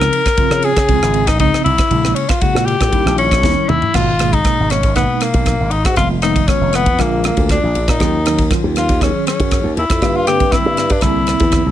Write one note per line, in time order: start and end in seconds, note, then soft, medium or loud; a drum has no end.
0.00 0.20 C#3 medium
0.00 0.20 F3 medium
0.00 0.20 C4 medium
0.00 0.20 D#4 medium
0.00 0.66 A#4 loud
0.00 cross-stick medium
0.13 ride medium
0.26 kick medium
0.26 cross-stick medium
0.26 ride medium
0.37 0.72 C#3 medium
0.37 0.71 F3 medium
0.37 0.72 C4 medium
0.37 0.71 F4 medium
0.37 kick loud
0.37 ride medium
0.51 0.71 C#3 medium
0.51 cross-stick medium
0.62 1.29 G#4 loud
0.62 ride medium
0.77 0.90 C#3 medium
0.77 kick medium
0.77 cross-stick medium
0.77 ride medium
0.88 0.99 C#2 medium
0.88 1.22 C#3 medium
0.88 1.22 F3 medium
0.88 1.22 C4 medium
0.88 1.22 F4 medium
0.88 kick medium
0.88 ride medium
1.02 1.39 G#1 medium
1.02 cross-stick medium
1.14 ride medium
1.27 1.39 D#4 medium
1.27 kick medium
1.27 cross-stick medium
1.27 ride medium
1.39 1.50 C#2 medium
1.39 1.73 C#3 medium
1.39 1.73 F3 medium
1.39 1.73 C4 medium
1.39 1.63 D#4 medium
1.39 1.73 D#4 medium
1.39 kick loud
1.39 ride medium
1.54 cross-stick medium
1.64 1.76 C2 medium
1.64 2.16 E4 medium
1.64 ride medium
1.78 kick medium
1.78 cross-stick medium
1.78 ride medium
1.91 2.11 A#1 medium
1.91 2.24 C#3 medium
1.91 2.24 G#3 medium
1.91 2.24 A#3 medium
1.91 2.24 E4 medium
1.91 kick medium
1.91 ride medium
2.05 cross-stick medium
2.14 2.30 C#4 medium
2.14 ride medium
2.29 2.42 F4 medium
2.29 kick medium
2.29 cross-stick medium
2.29 ride medium
2.41 2.75 C#3 medium
2.41 2.75 G#3 medium
2.41 2.75 A#3 medium
2.41 2.75 E4 medium
2.41 2.67 F#4 medium
2.41 kick medium
2.41 ride medium
2.55 2.75 A#2 medium
2.55 cross-stick medium
2.66 3.17 G4 medium
2.66 ride medium
2.80 2.92 A#2 medium
2.80 kick medium
2.80 cross-stick medium
2.80 ride medium
2.92 3.03 D#2 medium
2.92 3.26 D#3 medium
2.92 3.26 G3 medium
2.92 3.26 C#4 medium
2.92 3.26 E4 medium
2.92 kick medium
2.92 ride medium
3.05 3.44 A#1 medium
3.05 cross-stick medium
3.18 3.70 C#4 medium
3.18 ride medium
3.31 kick medium
3.31 cross-stick medium
3.31 ride medium
3.43 3.54 D#2 medium
3.43 3.77 D#3 medium
3.43 3.77 G3 medium
3.43 3.77 C#4 medium
3.43 3.77 E4 medium
3.43 kick loud
3.43 snare medium
3.68 3.79 D#2 medium
3.68 3.96 E4 medium
3.68 mid tom medium
3.82 floor tom medium
3.94 4.46 G#1 loud
3.94 4.11 B2 medium
3.94 4.11 G#3 medium
3.94 4.11 A#3 medium
3.94 4.34 F4 medium
3.94 4.11 F#4 medium
3.94 kick medium
3.94 cross-stick medium
3.94 crash medium
4.19 4.37 B2 medium
4.19 4.37 G#3 medium
4.19 4.37 A#3 medium
4.19 4.37 G#4 medium
4.19 cross-stick medium
4.19 ride medium
4.33 4.72 D#4 medium
4.33 kick medium
4.33 ride medium
4.44 4.78 B2 medium
4.44 4.78 G#3 medium
4.44 4.78 A#3 medium
4.44 4.78 G#4 medium
4.44 kick medium
4.44 cross-stick medium
4.44 ride medium
4.60 4.80 G#1 medium
4.70 4.95 C#4 medium
4.70 cross-stick medium
4.70 ride medium
4.83 5.04 G#1 medium
4.83 kick medium
4.83 ride medium
4.96 5.62 B2 medium
4.96 5.62 G#3 medium
4.96 5.62 A#3 medium
4.96 5.24 B3 medium
4.96 5.62 D#4 medium
4.96 kick medium
4.96 cross-stick medium
4.96 ride medium
5.20 5.73 A#3 medium
5.20 cross-stick medium
5.20 ride medium
5.34 5.54 B1 medium
5.34 kick medium
5.34 ride medium
5.46 kick loud
5.46 cross-stick medium
5.46 ride medium
5.60 5.70 G#1 medium
5.71 5.82 G#1 medium
5.71 5.86 D#4 medium
5.71 ride medium
5.85 5.95 G#2 medium
5.85 5.97 F#4 medium
5.85 kick medium
5.85 cross-stick medium
5.85 ride medium
5.96 6.49 F1 medium
5.96 6.14 D#3 medium
5.96 6.14 G#3 medium
5.96 6.14 B3 medium
5.96 6.14 F4 medium
5.96 6.09 F4 medium
5.96 kick medium
5.96 cross-stick medium
5.96 ride medium
6.22 6.40 D#3 medium
6.22 6.40 G#3 medium
6.22 6.40 B3 medium
6.22 6.49 D#4 medium
6.22 6.39 D#4 medium
6.22 cross-stick medium
6.22 ride medium
6.36 kick medium
6.36 ride medium
6.48 6.81 D#3 medium
6.48 6.81 G#3 medium
6.48 6.81 B3 medium
6.48 6.77 C#4 medium
6.48 6.81 F4 medium
6.48 kick medium
6.48 cross-stick medium
6.48 ride soft
6.61 6.88 F1 medium
6.73 7.03 B3 medium
6.73 cross-stick medium
6.73 ride medium
6.86 6.96 F2 medium
6.86 kick medium
6.86 ride soft
6.98 7.30 A#1 medium
6.98 7.65 D3 medium
6.98 7.65 G#3 medium
6.98 7.65 A#3 medium
6.98 7.25 A#3 medium
6.98 7.65 F4 medium
6.98 kick medium
6.98 cross-stick medium
6.98 ride soft
7.24 7.49 A#3 medium
7.24 cross-stick medium
7.24 ride medium
7.37 7.57 D2 medium
7.37 kick medium
7.37 ride medium
7.49 7.91 D4 medium
7.49 kick medium
7.49 cross-stick medium
7.49 ride medium
7.63 7.73 A#1 loud
7.75 7.86 A#1 medium
7.75 ride medium
7.88 7.97 A#2 medium
7.88 8.50 D#4 medium
7.88 kick medium
7.88 cross-stick medium
7.88 ride medium
8.00 8.52 D#2 loud
8.00 8.17 D#3 medium
8.00 8.17 F#3 medium
8.00 8.17 C#4 medium
8.00 8.17 F4 medium
8.00 kick medium
8.00 cross-stick medium
8.00 ride medium
8.26 8.42 D#3 medium
8.26 8.42 F#3 medium
8.26 8.42 C#4 medium
8.26 8.42 D#4 medium
8.26 cross-stick medium
8.26 ride medium
8.38 kick medium
8.38 ride medium
8.50 8.84 D#3 medium
8.50 8.84 F#3 medium
8.50 8.83 C#4 medium
8.50 8.84 F4 medium
8.50 kick loud
8.50 cross-stick medium
8.50 ride medium
8.64 8.84 D#2 medium
8.76 9.04 F4 medium
8.76 cross-stick medium
8.76 ride medium
8.89 9.10 D#2 medium
8.89 kick medium
8.89 ride medium
9.00 9.67 D#3 medium
9.00 9.67 F#3 medium
9.00 9.67 C#4 medium
9.00 9.26 C#4 medium
9.00 9.67 G#4 medium
9.00 kick medium
9.00 cross-stick medium
9.00 ride medium
9.27 9.73 C#4 medium
9.27 cross-stick medium
9.27 ride medium
9.40 9.60 F#2 medium
9.40 kick medium
9.40 ride medium
9.51 kick medium
9.51 cross-stick medium
9.51 ride medium
9.63 9.74 D#2 medium
9.77 9.87 D#2 medium
9.77 10.18 E4 medium
9.77 ride medium
9.90 9.99 F2 medium
9.90 kick medium
9.90 cross-stick medium
9.90 ride medium
10.01 10.54 G2 medium
10.01 10.19 D3 medium
10.01 10.19 G3 medium
10.01 10.18 A#3 medium
10.01 10.19 F4 medium
10.01 kick medium
10.01 cross-stick medium
10.01 ride medium
10.16 10.26 F4 medium
10.27 10.44 D3 medium
10.27 10.44 G3 medium
10.27 10.44 A#3 medium
10.27 10.44 C4 medium
10.27 10.53 G4 loud
10.27 cross-stick medium
10.27 ride medium
10.40 kick medium
10.40 ride medium
10.52 10.85 D3 medium
10.52 10.85 G3 medium
10.52 10.85 A#3 medium
10.52 10.85 C4 medium
10.52 10.93 E4 medium
10.52 kick medium
10.52 cross-stick medium
10.52 ride soft
10.66 10.86 G2 medium
10.77 cross-stick medium
10.77 ride medium
10.90 11.00 G2 medium
10.90 11.03 D4 medium
10.90 kick medium
10.90 ride medium
11.01 11.33 C2 medium
11.01 11.69 D3 medium
11.01 11.69 A#3 medium
11.01 11.69 C4 medium
11.01 11.71 E4 medium
11.01 11.69 E4 medium
11.01 kick medium
11.01 cross-stick medium
11.01 ride soft
11.27 cross-stick medium
11.27 ride medium
11.40 11.61 E2 medium
11.40 kick medium
11.40 ride soft
11.52 kick medium
11.52 cross-stick medium
11.52 ride medium
11.66 11.71 C2 medium